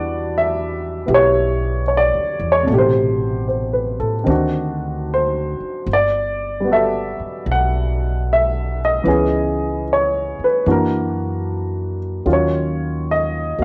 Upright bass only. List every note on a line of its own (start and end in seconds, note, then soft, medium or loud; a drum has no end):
0.00 1.04 E2 medium
1.08 2.10 B1 medium
2.14 2.39 D2 medium
2.40 2.65 E2 medium
2.68 3.96 A1 medium
4.00 4.25 A2 medium
4.27 5.56 D2 medium
5.60 muted upright bass stroke soft
5.86 7.15 G1 medium
7.20 muted upright bass stroke soft
7.46 9.02 B1 medium
9.05 10.35 C#2 medium
10.39 muted upright bass stroke soft
10.66 12.22 F#2 medium
12.26 13.55 D#2 medium
13.59 13.64 E2 medium